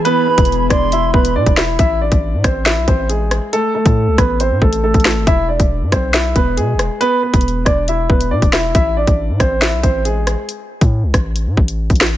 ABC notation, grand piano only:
X:1
M:4/4
L:1/8
Q:1/4=138
K:Am
V:1 name="Grand piano"
[B,B] [B,B]2 [Dd] [Ee] [B,B] [Dd] [Ee] | [Ee] [Dd]2 [Cc] [Ee] [Cc] [^G,^G]2 | [A,A] [A,A]2 [B,B] [Cc] [A,A] [A,A]2 | [Ee] [Dd]2 [Cc] [Ee] [B,B] [^G,^G]2 |
[B,B] [B,B]2 [Dd] [Ee] [B,B] [Dd] [Ee] | [Ee] [Dd]2 [Cc] [Ee] [Cc] [^G,^G]2 | z8 |]